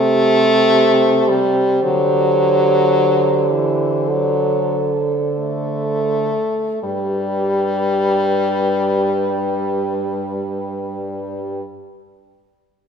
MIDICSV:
0, 0, Header, 1, 5, 480
1, 0, Start_track
1, 0, Key_signature, 1, "major"
1, 0, Tempo, 1069519
1, 827, Time_signature, 4, 2, 24, 8
1, 827, Tempo, 1121495
1, 1787, Tempo, 1293103
1, 2267, Tempo, 1463415
1, 2747, Tempo, 1339286
1, 4911, End_track
2, 0, Start_track
2, 0, Title_t, "French horn"
2, 0, Program_c, 0, 60
2, 0, Note_on_c, 0, 72, 81
2, 2585, Note_off_c, 0, 72, 0
2, 2747, Note_on_c, 0, 71, 85
2, 4459, Note_off_c, 0, 71, 0
2, 4911, End_track
3, 0, Start_track
3, 0, Title_t, "French horn"
3, 0, Program_c, 1, 60
3, 0, Note_on_c, 1, 67, 86
3, 1785, Note_on_c, 1, 69, 75
3, 1790, Note_off_c, 1, 67, 0
3, 2586, Note_off_c, 1, 69, 0
3, 2750, Note_on_c, 1, 67, 84
3, 4461, Note_off_c, 1, 67, 0
3, 4911, End_track
4, 0, Start_track
4, 0, Title_t, "French horn"
4, 0, Program_c, 2, 60
4, 0, Note_on_c, 2, 57, 127
4, 576, Note_on_c, 2, 55, 100
4, 583, Note_off_c, 2, 57, 0
4, 821, Note_on_c, 2, 54, 100
4, 828, Note_off_c, 2, 55, 0
4, 1533, Note_off_c, 2, 54, 0
4, 1536, Note_on_c, 2, 52, 79
4, 1790, Note_on_c, 2, 54, 94
4, 1796, Note_off_c, 2, 52, 0
4, 2118, Note_off_c, 2, 54, 0
4, 2268, Note_on_c, 2, 57, 91
4, 2735, Note_off_c, 2, 57, 0
4, 2744, Note_on_c, 2, 55, 99
4, 4454, Note_off_c, 2, 55, 0
4, 4911, End_track
5, 0, Start_track
5, 0, Title_t, "French horn"
5, 0, Program_c, 3, 60
5, 0, Note_on_c, 3, 48, 79
5, 819, Note_off_c, 3, 48, 0
5, 821, Note_on_c, 3, 50, 71
5, 2571, Note_off_c, 3, 50, 0
5, 2750, Note_on_c, 3, 43, 78
5, 4461, Note_off_c, 3, 43, 0
5, 4911, End_track
0, 0, End_of_file